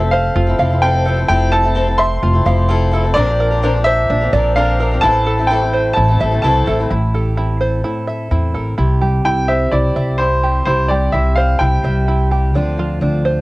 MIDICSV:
0, 0, Header, 1, 6, 480
1, 0, Start_track
1, 0, Tempo, 469116
1, 1316, Time_signature, 4, 2, 24, 8
1, 13721, End_track
2, 0, Start_track
2, 0, Title_t, "Upright piano"
2, 0, Program_c, 0, 0
2, 0, Note_on_c, 0, 76, 77
2, 115, Note_on_c, 0, 77, 77
2, 137, Note_off_c, 0, 76, 0
2, 836, Note_on_c, 0, 79, 83
2, 857, Note_off_c, 0, 77, 0
2, 1282, Note_off_c, 0, 79, 0
2, 1314, Note_on_c, 0, 79, 92
2, 1552, Note_on_c, 0, 81, 103
2, 1561, Note_off_c, 0, 79, 0
2, 2024, Note_on_c, 0, 84, 91
2, 2047, Note_off_c, 0, 81, 0
2, 2946, Note_off_c, 0, 84, 0
2, 3211, Note_on_c, 0, 74, 102
2, 3666, Note_off_c, 0, 74, 0
2, 3931, Note_on_c, 0, 76, 97
2, 4385, Note_off_c, 0, 76, 0
2, 4664, Note_on_c, 0, 77, 79
2, 5112, Note_off_c, 0, 77, 0
2, 5127, Note_on_c, 0, 81, 103
2, 5598, Note_on_c, 0, 79, 75
2, 5631, Note_off_c, 0, 81, 0
2, 6058, Note_off_c, 0, 79, 0
2, 6071, Note_on_c, 0, 81, 81
2, 6534, Note_off_c, 0, 81, 0
2, 6567, Note_on_c, 0, 81, 75
2, 6911, Note_off_c, 0, 81, 0
2, 9465, Note_on_c, 0, 79, 80
2, 9701, Note_on_c, 0, 76, 71
2, 9715, Note_off_c, 0, 79, 0
2, 9940, Note_on_c, 0, 74, 71
2, 9953, Note_off_c, 0, 76, 0
2, 10415, Note_on_c, 0, 72, 72
2, 10441, Note_off_c, 0, 74, 0
2, 10887, Note_off_c, 0, 72, 0
2, 10902, Note_on_c, 0, 72, 75
2, 11137, Note_on_c, 0, 74, 67
2, 11155, Note_off_c, 0, 72, 0
2, 11368, Note_off_c, 0, 74, 0
2, 11382, Note_on_c, 0, 76, 68
2, 11620, Note_on_c, 0, 77, 72
2, 11636, Note_off_c, 0, 76, 0
2, 11850, Note_off_c, 0, 77, 0
2, 11859, Note_on_c, 0, 79, 72
2, 12547, Note_off_c, 0, 79, 0
2, 13721, End_track
3, 0, Start_track
3, 0, Title_t, "Five-string banjo"
3, 0, Program_c, 1, 105
3, 0, Note_on_c, 1, 65, 82
3, 0, Note_on_c, 1, 69, 65
3, 130, Note_on_c, 1, 72, 75
3, 352, Note_off_c, 1, 65, 0
3, 365, Note_on_c, 1, 65, 80
3, 596, Note_off_c, 1, 69, 0
3, 605, Note_on_c, 1, 77, 82
3, 839, Note_off_c, 1, 65, 0
3, 851, Note_on_c, 1, 65, 66
3, 1082, Note_off_c, 1, 72, 0
3, 1084, Note_on_c, 1, 69, 64
3, 1552, Note_off_c, 1, 69, 0
3, 1559, Note_off_c, 1, 77, 0
3, 1564, Note_on_c, 1, 69, 72
3, 1801, Note_off_c, 1, 65, 0
3, 2037, Note_on_c, 1, 76, 75
3, 2280, Note_on_c, 1, 65, 76
3, 2517, Note_off_c, 1, 69, 0
3, 2520, Note_on_c, 1, 77, 77
3, 2740, Note_off_c, 1, 65, 0
3, 2752, Note_on_c, 1, 65, 72
3, 2993, Note_off_c, 1, 76, 0
3, 3002, Note_on_c, 1, 69, 64
3, 3231, Note_off_c, 1, 65, 0
3, 3234, Note_off_c, 1, 77, 0
3, 3236, Note_off_c, 1, 69, 0
3, 3241, Note_on_c, 1, 62, 86
3, 3479, Note_on_c, 1, 70, 70
3, 3708, Note_off_c, 1, 62, 0
3, 3720, Note_on_c, 1, 62, 75
3, 3954, Note_on_c, 1, 72, 75
3, 4185, Note_off_c, 1, 62, 0
3, 4197, Note_on_c, 1, 62, 76
3, 4427, Note_off_c, 1, 70, 0
3, 4431, Note_on_c, 1, 74, 85
3, 4656, Note_off_c, 1, 62, 0
3, 4668, Note_on_c, 1, 62, 71
3, 4907, Note_off_c, 1, 72, 0
3, 4911, Note_on_c, 1, 70, 69
3, 5148, Note_off_c, 1, 62, 0
3, 5149, Note_off_c, 1, 70, 0
3, 5149, Note_off_c, 1, 74, 0
3, 5149, Note_on_c, 1, 64, 90
3, 5387, Note_on_c, 1, 69, 67
3, 5618, Note_off_c, 1, 64, 0
3, 5630, Note_on_c, 1, 64, 69
3, 5868, Note_on_c, 1, 72, 71
3, 6092, Note_off_c, 1, 64, 0
3, 6105, Note_on_c, 1, 64, 75
3, 6346, Note_off_c, 1, 69, 0
3, 6348, Note_on_c, 1, 76, 75
3, 6573, Note_off_c, 1, 64, 0
3, 6585, Note_on_c, 1, 64, 69
3, 6826, Note_on_c, 1, 69, 64
3, 6827, Note_off_c, 1, 72, 0
3, 7051, Note_off_c, 1, 64, 0
3, 7064, Note_on_c, 1, 64, 70
3, 7066, Note_off_c, 1, 69, 0
3, 7067, Note_off_c, 1, 76, 0
3, 7310, Note_on_c, 1, 69, 64
3, 7532, Note_off_c, 1, 64, 0
3, 7544, Note_on_c, 1, 64, 71
3, 7783, Note_on_c, 1, 72, 64
3, 8010, Note_off_c, 1, 64, 0
3, 8022, Note_on_c, 1, 64, 67
3, 8261, Note_on_c, 1, 76, 67
3, 8269, Note_off_c, 1, 69, 0
3, 8492, Note_off_c, 1, 64, 0
3, 8504, Note_on_c, 1, 64, 62
3, 8742, Note_on_c, 1, 69, 55
3, 8746, Note_off_c, 1, 72, 0
3, 8969, Note_off_c, 1, 64, 0
3, 8982, Note_on_c, 1, 64, 72
3, 8985, Note_off_c, 1, 69, 0
3, 8985, Note_off_c, 1, 76, 0
3, 9223, Note_on_c, 1, 67, 59
3, 9450, Note_off_c, 1, 64, 0
3, 9462, Note_on_c, 1, 64, 64
3, 9705, Note_on_c, 1, 72, 62
3, 9938, Note_off_c, 1, 64, 0
3, 9950, Note_on_c, 1, 64, 62
3, 10188, Note_off_c, 1, 67, 0
3, 10191, Note_on_c, 1, 76, 68
3, 10419, Note_off_c, 1, 64, 0
3, 10431, Note_on_c, 1, 64, 58
3, 10669, Note_off_c, 1, 72, 0
3, 10677, Note_on_c, 1, 67, 56
3, 10903, Note_off_c, 1, 64, 0
3, 10915, Note_on_c, 1, 64, 75
3, 11146, Note_off_c, 1, 67, 0
3, 11153, Note_off_c, 1, 76, 0
3, 11159, Note_on_c, 1, 67, 64
3, 11385, Note_off_c, 1, 64, 0
3, 11398, Note_on_c, 1, 64, 70
3, 11639, Note_on_c, 1, 72, 67
3, 11866, Note_off_c, 1, 64, 0
3, 11879, Note_on_c, 1, 64, 69
3, 12118, Note_off_c, 1, 67, 0
3, 12122, Note_on_c, 1, 76, 72
3, 12351, Note_off_c, 1, 64, 0
3, 12363, Note_on_c, 1, 64, 63
3, 12599, Note_off_c, 1, 72, 0
3, 12600, Note_on_c, 1, 67, 57
3, 12839, Note_off_c, 1, 67, 0
3, 12840, Note_off_c, 1, 64, 0
3, 12840, Note_off_c, 1, 76, 0
3, 12846, Note_on_c, 1, 62, 77
3, 13088, Note_on_c, 1, 65, 64
3, 13311, Note_off_c, 1, 62, 0
3, 13323, Note_on_c, 1, 62, 69
3, 13558, Note_on_c, 1, 72, 66
3, 13721, Note_off_c, 1, 62, 0
3, 13721, Note_off_c, 1, 65, 0
3, 13721, Note_off_c, 1, 72, 0
3, 13721, End_track
4, 0, Start_track
4, 0, Title_t, "Steel-string acoustic guitar"
4, 0, Program_c, 2, 25
4, 7066, Note_on_c, 2, 45, 62
4, 7073, Note_on_c, 2, 64, 51
4, 7315, Note_on_c, 2, 67, 46
4, 7546, Note_on_c, 2, 60, 48
4, 7786, Note_off_c, 2, 67, 0
4, 7790, Note_on_c, 2, 69, 57
4, 8010, Note_off_c, 2, 45, 0
4, 8018, Note_off_c, 2, 69, 0
4, 8022, Note_on_c, 2, 45, 57
4, 8030, Note_on_c, 2, 69, 50
4, 8266, Note_off_c, 2, 69, 0
4, 8278, Note_on_c, 2, 69, 57
4, 8497, Note_off_c, 2, 60, 0
4, 8509, Note_on_c, 2, 60, 51
4, 8751, Note_off_c, 2, 69, 0
4, 8755, Note_on_c, 2, 70, 45
4, 8957, Note_off_c, 2, 45, 0
4, 8960, Note_off_c, 2, 60, 0
4, 8963, Note_off_c, 2, 64, 0
4, 8963, Note_off_c, 2, 70, 0
4, 8983, Note_on_c, 2, 48, 56
4, 8988, Note_on_c, 2, 67, 55
4, 9228, Note_on_c, 2, 55, 45
4, 9475, Note_on_c, 2, 60, 46
4, 9712, Note_off_c, 2, 67, 0
4, 9716, Note_on_c, 2, 67, 54
4, 9956, Note_on_c, 2, 64, 50
4, 10196, Note_off_c, 2, 60, 0
4, 10200, Note_on_c, 2, 60, 45
4, 10429, Note_off_c, 2, 64, 0
4, 10441, Note_on_c, 2, 64, 48
4, 10667, Note_off_c, 2, 67, 0
4, 10679, Note_on_c, 2, 67, 52
4, 10881, Note_off_c, 2, 48, 0
4, 10883, Note_off_c, 2, 55, 0
4, 10887, Note_off_c, 2, 67, 0
4, 10888, Note_off_c, 2, 64, 0
4, 10914, Note_on_c, 2, 48, 64
4, 10919, Note_on_c, 2, 67, 57
4, 11157, Note_on_c, 2, 55, 45
4, 11399, Note_off_c, 2, 60, 0
4, 11403, Note_on_c, 2, 60, 47
4, 11632, Note_off_c, 2, 67, 0
4, 11644, Note_on_c, 2, 67, 59
4, 11882, Note_on_c, 2, 64, 54
4, 12122, Note_off_c, 2, 60, 0
4, 12126, Note_on_c, 2, 60, 52
4, 12354, Note_off_c, 2, 64, 0
4, 12367, Note_on_c, 2, 64, 50
4, 12590, Note_off_c, 2, 67, 0
4, 12603, Note_on_c, 2, 67, 52
4, 12809, Note_off_c, 2, 48, 0
4, 12810, Note_off_c, 2, 55, 0
4, 12811, Note_off_c, 2, 67, 0
4, 12813, Note_off_c, 2, 64, 0
4, 12835, Note_on_c, 2, 50, 68
4, 12841, Note_on_c, 2, 53, 55
4, 12846, Note_off_c, 2, 60, 0
4, 12850, Note_on_c, 2, 60, 59
4, 12856, Note_on_c, 2, 62, 54
4, 12862, Note_on_c, 2, 65, 65
4, 13064, Note_off_c, 2, 53, 0
4, 13068, Note_on_c, 2, 53, 52
4, 13314, Note_off_c, 2, 60, 0
4, 13318, Note_on_c, 2, 60, 49
4, 13552, Note_off_c, 2, 65, 0
4, 13556, Note_on_c, 2, 65, 58
4, 13721, Note_off_c, 2, 50, 0
4, 13721, Note_off_c, 2, 53, 0
4, 13721, Note_off_c, 2, 60, 0
4, 13721, Note_off_c, 2, 62, 0
4, 13721, Note_off_c, 2, 65, 0
4, 13721, End_track
5, 0, Start_track
5, 0, Title_t, "Steel-string acoustic guitar"
5, 0, Program_c, 3, 25
5, 0, Note_on_c, 3, 69, 53
5, 31, Note_on_c, 3, 60, 38
5, 466, Note_off_c, 3, 69, 0
5, 478, Note_on_c, 3, 69, 51
5, 494, Note_on_c, 3, 64, 41
5, 505, Note_off_c, 3, 60, 0
5, 509, Note_on_c, 3, 60, 39
5, 598, Note_off_c, 3, 69, 0
5, 598, Note_on_c, 3, 53, 58
5, 601, Note_off_c, 3, 60, 0
5, 606, Note_off_c, 3, 64, 0
5, 613, Note_on_c, 3, 60, 59
5, 621, Note_on_c, 3, 64, 61
5, 630, Note_on_c, 3, 69, 64
5, 704, Note_off_c, 3, 69, 0
5, 716, Note_on_c, 3, 69, 43
5, 717, Note_off_c, 3, 53, 0
5, 723, Note_off_c, 3, 64, 0
5, 725, Note_off_c, 3, 60, 0
5, 735, Note_on_c, 3, 64, 42
5, 749, Note_on_c, 3, 60, 36
5, 834, Note_off_c, 3, 60, 0
5, 836, Note_off_c, 3, 69, 0
5, 840, Note_on_c, 3, 53, 69
5, 841, Note_off_c, 3, 64, 0
5, 846, Note_on_c, 3, 60, 69
5, 854, Note_on_c, 3, 64, 67
5, 859, Note_on_c, 3, 69, 77
5, 1064, Note_off_c, 3, 53, 0
5, 1076, Note_off_c, 3, 60, 0
5, 1076, Note_on_c, 3, 53, 62
5, 1085, Note_off_c, 3, 64, 0
5, 1087, Note_off_c, 3, 69, 0
5, 1088, Note_on_c, 3, 60, 63
5, 1099, Note_on_c, 3, 64, 69
5, 1108, Note_on_c, 3, 69, 72
5, 1183, Note_off_c, 3, 69, 0
5, 1195, Note_on_c, 3, 69, 47
5, 1196, Note_off_c, 3, 53, 0
5, 1198, Note_off_c, 3, 64, 0
5, 1202, Note_off_c, 3, 60, 0
5, 1211, Note_on_c, 3, 64, 41
5, 1226, Note_on_c, 3, 60, 39
5, 1315, Note_off_c, 3, 69, 0
5, 1316, Note_off_c, 3, 60, 0
5, 1320, Note_on_c, 3, 53, 67
5, 1323, Note_off_c, 3, 64, 0
5, 1328, Note_on_c, 3, 60, 75
5, 1336, Note_on_c, 3, 64, 74
5, 1342, Note_on_c, 3, 69, 74
5, 1658, Note_off_c, 3, 69, 0
5, 1670, Note_on_c, 3, 69, 46
5, 1674, Note_off_c, 3, 64, 0
5, 1677, Note_off_c, 3, 53, 0
5, 1681, Note_off_c, 3, 60, 0
5, 1686, Note_on_c, 3, 64, 41
5, 1701, Note_on_c, 3, 60, 43
5, 1786, Note_off_c, 3, 60, 0
5, 1790, Note_on_c, 3, 53, 77
5, 1792, Note_off_c, 3, 69, 0
5, 1795, Note_off_c, 3, 64, 0
5, 1798, Note_on_c, 3, 60, 75
5, 1808, Note_on_c, 3, 64, 72
5, 1811, Note_on_c, 3, 69, 82
5, 1898, Note_off_c, 3, 69, 0
5, 1910, Note_on_c, 3, 69, 47
5, 1912, Note_off_c, 3, 53, 0
5, 1913, Note_off_c, 3, 64, 0
5, 1916, Note_off_c, 3, 60, 0
5, 1926, Note_on_c, 3, 64, 46
5, 1941, Note_on_c, 3, 60, 37
5, 2373, Note_off_c, 3, 69, 0
5, 2385, Note_on_c, 3, 69, 49
5, 2390, Note_off_c, 3, 64, 0
5, 2402, Note_on_c, 3, 64, 43
5, 2411, Note_off_c, 3, 60, 0
5, 2415, Note_on_c, 3, 60, 43
5, 2509, Note_off_c, 3, 69, 0
5, 2511, Note_on_c, 3, 53, 57
5, 2515, Note_off_c, 3, 60, 0
5, 2517, Note_off_c, 3, 64, 0
5, 2527, Note_on_c, 3, 60, 54
5, 2533, Note_on_c, 3, 64, 64
5, 2544, Note_on_c, 3, 69, 65
5, 2735, Note_off_c, 3, 53, 0
5, 2742, Note_off_c, 3, 60, 0
5, 2747, Note_on_c, 3, 53, 81
5, 2751, Note_off_c, 3, 64, 0
5, 2755, Note_on_c, 3, 60, 75
5, 2757, Note_off_c, 3, 69, 0
5, 2764, Note_on_c, 3, 64, 87
5, 2769, Note_on_c, 3, 69, 88
5, 2970, Note_off_c, 3, 53, 0
5, 2982, Note_on_c, 3, 53, 66
5, 2985, Note_off_c, 3, 60, 0
5, 2993, Note_off_c, 3, 64, 0
5, 2997, Note_on_c, 3, 60, 65
5, 3000, Note_off_c, 3, 69, 0
5, 3005, Note_on_c, 3, 64, 71
5, 3017, Note_on_c, 3, 69, 75
5, 3097, Note_off_c, 3, 69, 0
5, 3107, Note_off_c, 3, 53, 0
5, 3110, Note_on_c, 3, 69, 50
5, 3114, Note_off_c, 3, 60, 0
5, 3115, Note_off_c, 3, 64, 0
5, 3128, Note_on_c, 3, 64, 48
5, 3141, Note_on_c, 3, 60, 39
5, 3228, Note_on_c, 3, 46, 75
5, 3230, Note_off_c, 3, 60, 0
5, 3230, Note_off_c, 3, 69, 0
5, 3233, Note_on_c, 3, 50, 76
5, 3239, Note_off_c, 3, 64, 0
5, 3240, Note_on_c, 3, 53, 74
5, 3242, Note_on_c, 3, 60, 74
5, 3245, Note_on_c, 3, 62, 85
5, 3249, Note_on_c, 3, 70, 83
5, 3338, Note_off_c, 3, 70, 0
5, 3349, Note_off_c, 3, 46, 0
5, 3350, Note_on_c, 3, 70, 47
5, 3352, Note_off_c, 3, 50, 0
5, 3352, Note_off_c, 3, 62, 0
5, 3355, Note_off_c, 3, 53, 0
5, 3356, Note_off_c, 3, 60, 0
5, 3364, Note_on_c, 3, 62, 44
5, 3374, Note_on_c, 3, 60, 41
5, 3385, Note_on_c, 3, 53, 41
5, 3575, Note_off_c, 3, 70, 0
5, 3587, Note_on_c, 3, 70, 50
5, 3589, Note_off_c, 3, 62, 0
5, 3597, Note_off_c, 3, 60, 0
5, 3602, Note_on_c, 3, 62, 51
5, 3607, Note_off_c, 3, 53, 0
5, 3609, Note_on_c, 3, 60, 46
5, 3620, Note_on_c, 3, 53, 43
5, 3708, Note_off_c, 3, 70, 0
5, 3709, Note_off_c, 3, 53, 0
5, 3711, Note_off_c, 3, 60, 0
5, 3711, Note_on_c, 3, 46, 77
5, 3716, Note_off_c, 3, 62, 0
5, 3716, Note_on_c, 3, 50, 73
5, 3721, Note_on_c, 3, 53, 76
5, 3723, Note_on_c, 3, 60, 76
5, 3729, Note_on_c, 3, 62, 83
5, 3730, Note_on_c, 3, 70, 82
5, 3821, Note_off_c, 3, 70, 0
5, 3830, Note_off_c, 3, 46, 0
5, 3833, Note_off_c, 3, 50, 0
5, 3834, Note_off_c, 3, 62, 0
5, 3834, Note_on_c, 3, 70, 46
5, 3835, Note_off_c, 3, 53, 0
5, 3836, Note_off_c, 3, 60, 0
5, 3846, Note_on_c, 3, 62, 51
5, 3856, Note_on_c, 3, 60, 45
5, 3865, Note_on_c, 3, 53, 39
5, 4297, Note_off_c, 3, 70, 0
5, 4308, Note_off_c, 3, 62, 0
5, 4309, Note_on_c, 3, 70, 49
5, 4320, Note_on_c, 3, 62, 48
5, 4327, Note_off_c, 3, 53, 0
5, 4327, Note_off_c, 3, 60, 0
5, 4331, Note_on_c, 3, 60, 45
5, 4340, Note_on_c, 3, 53, 43
5, 4415, Note_off_c, 3, 53, 0
5, 4426, Note_off_c, 3, 60, 0
5, 4427, Note_on_c, 3, 53, 61
5, 4429, Note_off_c, 3, 70, 0
5, 4434, Note_off_c, 3, 62, 0
5, 4438, Note_on_c, 3, 60, 61
5, 4447, Note_on_c, 3, 62, 64
5, 4457, Note_on_c, 3, 70, 58
5, 4663, Note_off_c, 3, 53, 0
5, 4663, Note_on_c, 3, 46, 67
5, 4664, Note_off_c, 3, 60, 0
5, 4667, Note_off_c, 3, 62, 0
5, 4669, Note_on_c, 3, 50, 82
5, 4673, Note_off_c, 3, 70, 0
5, 4675, Note_on_c, 3, 53, 77
5, 4676, Note_on_c, 3, 60, 83
5, 4680, Note_on_c, 3, 62, 75
5, 4686, Note_on_c, 3, 70, 86
5, 4889, Note_off_c, 3, 53, 0
5, 4901, Note_off_c, 3, 60, 0
5, 4901, Note_on_c, 3, 53, 56
5, 4905, Note_off_c, 3, 46, 0
5, 4908, Note_off_c, 3, 50, 0
5, 4911, Note_off_c, 3, 62, 0
5, 4914, Note_on_c, 3, 60, 67
5, 4917, Note_off_c, 3, 70, 0
5, 4923, Note_on_c, 3, 62, 67
5, 4929, Note_on_c, 3, 70, 65
5, 5012, Note_off_c, 3, 70, 0
5, 5024, Note_off_c, 3, 53, 0
5, 5025, Note_on_c, 3, 70, 50
5, 5026, Note_off_c, 3, 62, 0
5, 5031, Note_off_c, 3, 60, 0
5, 5038, Note_on_c, 3, 62, 46
5, 5046, Note_on_c, 3, 60, 43
5, 5055, Note_on_c, 3, 53, 40
5, 5146, Note_off_c, 3, 70, 0
5, 5146, Note_on_c, 3, 45, 64
5, 5148, Note_off_c, 3, 60, 0
5, 5153, Note_off_c, 3, 62, 0
5, 5153, Note_on_c, 3, 52, 69
5, 5154, Note_off_c, 3, 53, 0
5, 5158, Note_on_c, 3, 57, 76
5, 5160, Note_on_c, 3, 60, 79
5, 5163, Note_on_c, 3, 64, 73
5, 5168, Note_on_c, 3, 69, 79
5, 5492, Note_off_c, 3, 69, 0
5, 5505, Note_on_c, 3, 69, 45
5, 5506, Note_off_c, 3, 45, 0
5, 5507, Note_off_c, 3, 64, 0
5, 5510, Note_off_c, 3, 52, 0
5, 5512, Note_off_c, 3, 57, 0
5, 5513, Note_off_c, 3, 60, 0
5, 5519, Note_on_c, 3, 64, 46
5, 5529, Note_on_c, 3, 60, 43
5, 5537, Note_on_c, 3, 57, 38
5, 5623, Note_off_c, 3, 57, 0
5, 5624, Note_on_c, 3, 45, 70
5, 5626, Note_off_c, 3, 60, 0
5, 5626, Note_off_c, 3, 69, 0
5, 5629, Note_on_c, 3, 52, 66
5, 5631, Note_off_c, 3, 64, 0
5, 5635, Note_on_c, 3, 57, 69
5, 5638, Note_on_c, 3, 60, 72
5, 5643, Note_on_c, 3, 64, 78
5, 5648, Note_on_c, 3, 69, 83
5, 5731, Note_off_c, 3, 69, 0
5, 5743, Note_on_c, 3, 69, 45
5, 5744, Note_off_c, 3, 64, 0
5, 5745, Note_off_c, 3, 45, 0
5, 5748, Note_off_c, 3, 52, 0
5, 5751, Note_off_c, 3, 57, 0
5, 5753, Note_off_c, 3, 60, 0
5, 5756, Note_on_c, 3, 64, 45
5, 5765, Note_on_c, 3, 60, 42
5, 5775, Note_on_c, 3, 57, 42
5, 6210, Note_off_c, 3, 69, 0
5, 6221, Note_off_c, 3, 64, 0
5, 6222, Note_on_c, 3, 69, 49
5, 6232, Note_off_c, 3, 60, 0
5, 6233, Note_on_c, 3, 64, 41
5, 6241, Note_off_c, 3, 57, 0
5, 6244, Note_on_c, 3, 60, 41
5, 6251, Note_on_c, 3, 57, 43
5, 6327, Note_off_c, 3, 57, 0
5, 6339, Note_off_c, 3, 60, 0
5, 6340, Note_on_c, 3, 57, 51
5, 6344, Note_off_c, 3, 69, 0
5, 6347, Note_off_c, 3, 64, 0
5, 6352, Note_on_c, 3, 60, 56
5, 6360, Note_on_c, 3, 64, 56
5, 6371, Note_on_c, 3, 69, 60
5, 6444, Note_off_c, 3, 69, 0
5, 6457, Note_on_c, 3, 69, 47
5, 6459, Note_off_c, 3, 64, 0
5, 6463, Note_off_c, 3, 57, 0
5, 6469, Note_off_c, 3, 60, 0
5, 6471, Note_on_c, 3, 64, 41
5, 6483, Note_on_c, 3, 60, 41
5, 6490, Note_on_c, 3, 57, 38
5, 6578, Note_off_c, 3, 57, 0
5, 6581, Note_off_c, 3, 60, 0
5, 6582, Note_off_c, 3, 69, 0
5, 6583, Note_on_c, 3, 45, 68
5, 6587, Note_on_c, 3, 52, 67
5, 6589, Note_off_c, 3, 64, 0
5, 6590, Note_on_c, 3, 57, 76
5, 6594, Note_on_c, 3, 60, 72
5, 6600, Note_on_c, 3, 64, 85
5, 6605, Note_on_c, 3, 69, 80
5, 6802, Note_off_c, 3, 57, 0
5, 6815, Note_on_c, 3, 57, 60
5, 6816, Note_off_c, 3, 60, 0
5, 6824, Note_off_c, 3, 45, 0
5, 6825, Note_off_c, 3, 64, 0
5, 6827, Note_off_c, 3, 52, 0
5, 6829, Note_on_c, 3, 60, 58
5, 6835, Note_off_c, 3, 69, 0
5, 6838, Note_on_c, 3, 64, 63
5, 6847, Note_on_c, 3, 69, 66
5, 6929, Note_off_c, 3, 69, 0
5, 6940, Note_off_c, 3, 57, 0
5, 6941, Note_on_c, 3, 69, 46
5, 6944, Note_off_c, 3, 64, 0
5, 6948, Note_off_c, 3, 60, 0
5, 6956, Note_on_c, 3, 64, 45
5, 6962, Note_on_c, 3, 60, 40
5, 6973, Note_on_c, 3, 57, 38
5, 7064, Note_off_c, 3, 69, 0
5, 7071, Note_off_c, 3, 64, 0
5, 7074, Note_off_c, 3, 60, 0
5, 7080, Note_off_c, 3, 57, 0
5, 13721, End_track
6, 0, Start_track
6, 0, Title_t, "Upright bass"
6, 0, Program_c, 4, 32
6, 0, Note_on_c, 4, 29, 82
6, 321, Note_off_c, 4, 29, 0
6, 363, Note_on_c, 4, 29, 80
6, 582, Note_off_c, 4, 29, 0
6, 602, Note_on_c, 4, 29, 84
6, 1277, Note_off_c, 4, 29, 0
6, 1325, Note_on_c, 4, 29, 91
6, 2237, Note_off_c, 4, 29, 0
6, 2279, Note_on_c, 4, 29, 84
6, 2497, Note_off_c, 4, 29, 0
6, 2516, Note_on_c, 4, 29, 90
6, 3192, Note_off_c, 4, 29, 0
6, 3233, Note_on_c, 4, 34, 96
6, 4149, Note_off_c, 4, 34, 0
6, 4194, Note_on_c, 4, 34, 82
6, 4413, Note_off_c, 4, 34, 0
6, 4430, Note_on_c, 4, 34, 91
6, 5107, Note_off_c, 4, 34, 0
6, 5151, Note_on_c, 4, 33, 87
6, 6067, Note_off_c, 4, 33, 0
6, 6111, Note_on_c, 4, 33, 79
6, 6331, Note_off_c, 4, 33, 0
6, 6350, Note_on_c, 4, 33, 86
6, 6570, Note_off_c, 4, 33, 0
6, 6586, Note_on_c, 4, 36, 75
6, 6802, Note_off_c, 4, 36, 0
6, 6827, Note_on_c, 4, 33, 76
6, 7043, Note_off_c, 4, 33, 0
6, 7067, Note_on_c, 4, 33, 75
6, 7986, Note_off_c, 4, 33, 0
6, 8502, Note_on_c, 4, 40, 75
6, 8726, Note_off_c, 4, 40, 0
6, 8745, Note_on_c, 4, 33, 63
6, 8968, Note_off_c, 4, 33, 0
6, 8989, Note_on_c, 4, 36, 77
6, 9432, Note_off_c, 4, 36, 0
6, 9473, Note_on_c, 4, 36, 72
6, 9915, Note_off_c, 4, 36, 0
6, 9946, Note_on_c, 4, 36, 76
6, 10170, Note_off_c, 4, 36, 0
6, 10192, Note_on_c, 4, 36, 73
6, 10872, Note_off_c, 4, 36, 0
6, 10914, Note_on_c, 4, 36, 75
6, 11357, Note_off_c, 4, 36, 0
6, 11394, Note_on_c, 4, 36, 69
6, 11838, Note_off_c, 4, 36, 0
6, 11874, Note_on_c, 4, 36, 77
6, 12096, Note_off_c, 4, 36, 0
6, 12114, Note_on_c, 4, 36, 74
6, 12836, Note_off_c, 4, 36, 0
6, 12836, Note_on_c, 4, 38, 80
6, 13280, Note_off_c, 4, 38, 0
6, 13312, Note_on_c, 4, 38, 76
6, 13721, Note_off_c, 4, 38, 0
6, 13721, End_track
0, 0, End_of_file